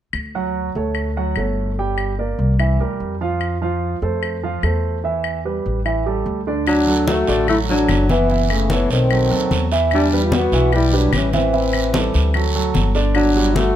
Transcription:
0.13 upright bass D2, claves
0.35 grand piano F#3 F#4 F#5
0.75 upright bass D2, grand piano A3 A4 C#5
0.95 claves
1.17 grand piano F#3 F#4 F#5
1.36 upright bass G1, grand piano A3 A4 C#5, claves
1.79 grand piano G3 G4 G5
1.98 claves
2.19 grand piano A#3 A#4 D5
2.39 upright bass C2
2.59 grand piano E3 E4 E5, claves
2.80 grand piano G3 G4 A#4
3.00 upright bass F2
3.21 grand piano F3 F4 F5
3.41 claves
3.62 grand piano F3 F4 F5
4.02 upright bass F2, grand piano A3 A4 C5
4.23 claves
4.43 grand piano F3 F4 F5
4.63 upright bass E2, grand piano A3 A4 C5, claves
5.04 grand piano E3 E4 E5
5.24 claves
5.45 grand piano G3 G4 B4
5.66 upright bass A1
5.85 grand piano E3 E4 E5, claves
6.06 grand piano G3 G4 A4
6.26 upright bass D2
6.47 grand piano D3 D4 D5
6.67 tenor saxophone F#3, trombone D4, high conga, long guiro, claves
6.87 grand piano F#3 F#4 A4, high conga
7.07 tenor saxophone A3, trombone F#4, high conga, short guiro
7.27 upright bass A1, grand piano D3 D4 D5, short guiro
7.48 grand piano F#3 F#4 A4, tenor saxophone A3, trombone E4, high conga, long guiro, claves
7.69 grand piano F#3 F#4 A4, tenor saxophone F#3, trombone D4, high conga
7.88 upright bass F#1, high conga, short guiro, claves
8.09 grand piano E3 E4 E5, tenor saxophone E3, trombone B3, high conga, short guiro
8.30 grand piano E3 E4 E5, high conga, long guiro
8.50 tenor saxophone C#3, trombone A3, high conga, claves
8.70 tenor saxophone E3, grand piano A3 A4 C#5, trombone B3, high conga, short guiro
8.90 upright bass B1, tenor saxophone D#3, trombone C4, high conga, short guiro
9.10 grand piano F#3 F#4 A4, high conga, long guiro, claves
9.30 upright bass D#2, grand piano F#3 F#4 A4, high conga
9.51 upright bass E2, high conga, short guiro
9.72 grand piano E3 E4 E5, short guiro
9.91 tenor saxophone G3, trombone D4, high conga, long guiro, claves
10.12 grand piano G3 G4 B4, high conga
10.25 tenor saxophone G3, trombone F4
10.32 tenor saxophone B3, trombone F#4, high conga, short guiro
10.52 upright bass B1, grand piano E3 E4 E5, short guiro
10.72 grand piano G3 G4 B4, tenor saxophone G3, trombone E4, high conga, long guiro, claves
10.92 grand piano G3 G4 B4, trombone D4, high conga
10.96 tenor saxophone F#3
11.13 upright bass A1, tenor saxophone E3, trombone C#4, high conga, short guiro, claves
11.33 grand piano E3 E4 E5, tenor saxophone E3, trombone C4, high conga, short guiro
11.53 grand piano E3 E4 E5, high conga, long guiro
11.73 high conga, claves
11.94 grand piano G3 G4 A4, high conga, short guiro
12.14 upright bass D2, high conga, short guiro
12.34 grand piano F#3 F#4 A4, high conga, long guiro, claves
12.55 grand piano F#3 F#4 A4, high conga
12.74 upright bass G1, high conga, short guiro
12.95 grand piano D3 D4 D5, short guiro
13.15 tenor saxophone F#3, trombone D4, high conga, long guiro, claves
13.36 grand piano G3 F#4 G4, high conga
13.55 tenor saxophone A3, trombone F#4, high conga, short guiro

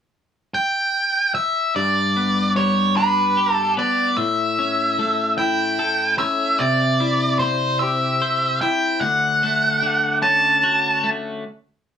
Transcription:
0.54 lead electric guitar G5
1.35 lead electric guitar E5
1.76 clean electric guitar G2, lead electric guitar D5
2.17 clean electric guitar B3
2.56 clean electric guitar G3, lead electric guitar C#5
2.97 clean electric guitar D4, lead electric guitar B4
3.37 clean electric guitar G4
3.53 lead electric guitar A4
3.77 clean electric guitar B3, lead electric guitar D5
4.17 clean electric guitar A2, lead electric guitar E5
4.59 clean electric guitar C#4
4.99 clean electric guitar A3
5.38 clean electric guitar E4, lead electric guitar G5
5.79 clean electric guitar A4
6.19 clean electric guitar C#4, lead electric guitar E5
6.59 clean electric guitar C3, lead electric guitar D5, vibraphone E5
7.00 clean electric guitar E4, vibraphone D5
7.39 clean electric guitar C4, lead electric guitar C5
7.79 clean electric guitar G4, vibraphone C5, lead electric guitar E5
8.22 clean electric guitar C5
8.61 clean electric guitar E4, lead electric guitar G5
9.01 clean electric guitar D2, lead electric guitar F#5
9.43 clean electric guitar A3
9.83 clean electric guitar D3
10.22 clean electric guitar C#4, lead electric guitar A5
10.63 clean electric guitar F#4
11.04 clean electric guitar A3

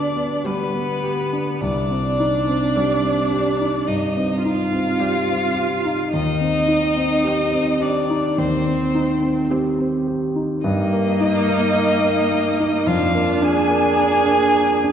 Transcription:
Already playing: grand piano D3 B3 D4 G4, cello D4, violin D5
0.16 grand piano B3
0.44 viola G3, cello B3, grand piano G4, violin B4
0.74 grand piano B3
1.03 grand piano G4
1.33 grand piano D4
1.61 grand piano C2, cello D4, violin D5
1.90 grand piano C4
2.19 grand piano D#4
2.48 grand piano C4
2.76 viola G3, grand piano G4
3.04 grand piano C4
3.32 grand piano G4
3.60 grand piano D#4
3.87 grand piano G2, cello D#4, violin D#5
4.16 grand piano C4
4.42 grand piano D#4, cello F4, violin F5
4.73 grand piano C4
5.01 viola G3, grand piano G4
5.29 grand piano C4
5.56 grand piano G4
5.85 grand piano D#4
6.12 grand piano D#2, cello D#4, violin D#5
6.40 grand piano C4
6.68 grand piano D#4
6.96 grand piano C4
7.24 viola C4, grand piano G4
7.52 grand piano C4
7.81 cello D4, grand piano G4, violin D5
8.10 grand piano D#4
8.38 grand piano D#2, cello C4, violin C5
8.66 grand piano C4
8.95 grand piano D#4
9.22 grand piano C4
9.50 viola C4, grand piano G4
9.79 grand piano C4
10.07 grand piano G4
10.35 grand piano D#4
10.63 grand piano G2, viola A#3, cello D#4, violin D#5
10.93 grand piano A#3
11.20 grand piano D#4
11.47 grand piano A#3
11.75 grand piano A#4
12.04 grand piano A#3
12.32 grand piano A#4
12.60 grand piano D#4
12.86 grand piano F2, viola D4, cello F4, violin F5
13.14 grand piano A#3
13.41 grand piano D4, cello G#4, violin G#5
13.69 grand piano A#3
13.97 grand piano A#4
14.26 grand piano A#3
14.56 grand piano A#4
14.84 grand piano D4

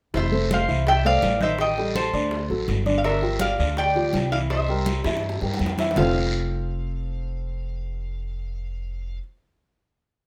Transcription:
0.14 upright bass F1, upright piano E3 E4 E5, resonator guitar played with a steel bar C5 E5, high bongo, high conga, long guiro
0.32 upright piano A3 A4 C5, high bongo, high conga
0.51 resonator guitar played with a steel bar C5 F5, high bongo, high conga, short guiro
0.68 upright bass C2, upright piano E3 E4 E5, high conga, short guiro
0.87 resonator guitar played with a steel bar E5 G5, high bongo, high conga, long guiro
1.05 upright piano A3 A4 C5, resonator guitar played with a steel bar D5 F5, high bongo, high conga
1.22 upright bass A1, high bongo, low bongo, high conga, short guiro
1.41 upright piano D#3 D#4 D#5, resonator guitar played with a steel bar C5 E5, high bongo, high conga, short guiro
1.59 resonator guitar played with a steel bar D#5 G5, high bongo, high conga, long guiro
1.77 upright piano G3 G4 A4, high bongo, high conga
1.95 resonator guitar played with a steel bar A4 C5, high bongo, high conga, short guiro
2.13 upright bass D2, upright piano D3 D4 D5, short guiro
2.31 high bongo, high conga, long guiro
2.50 upright bass A1, upright piano F#3 F#4 A4, high bongo, high conga
2.68 upright bass G1, high bongo, low bongo, high conga, short guiro
2.86 upright piano D3 D4 D5, high bongo, high conga, short guiro
2.98 resonator guitar played with a steel bar F5
3.04 upright piano D3 D4 D5, resonator guitar played with a steel bar A#4 E5, high bongo, high conga, long guiro
3.22 upright piano F3 F4 G4, high bongo, high conga
3.39 resonator guitar played with a steel bar D5 F5, high bongo, high conga, short guiro
3.58 upright bass D2, upright piano D3 D4 D5, high conga, short guiro
3.77 resonator guitar played with a steel bar D5 G5, high bongo, high conga, long guiro
3.95 upright piano F3 F4 G4, high bongo, high conga
4.13 upright bass C2, high bongo, low bongo, high conga, short guiro
4.32 upright piano E3 E4 E5, resonator guitar played with a steel bar D5 F5, high bongo, short guiro
4.50 resonator guitar played with a steel bar C5 E5, high bongo, high conga, long guiro
4.67 upright piano G3 G4 A#4, high bongo, high conga
4.86 high bongo, high conga, short guiro
5.04 upright bass G2, upright piano E3 E4 E5, high bongo, short guiro
5.17 high bongo
5.23 high conga, long guiro
5.29 high bongo
5.41 upright bass G2, upright piano G3 G4 A#4, low bongo, high conga
5.54 low bongo
5.59 upright bass F2, high conga, short guiro
5.66 low bongo
5.78 upright piano E3 E4 E5, low bongo, high conga, short guiro
5.91 low bongo
5.96 upright bass F1, upright piano F3 C4 F4 A4 C5, resonator guitar played with a steel bar F5, low bongo, low conga, long guiro

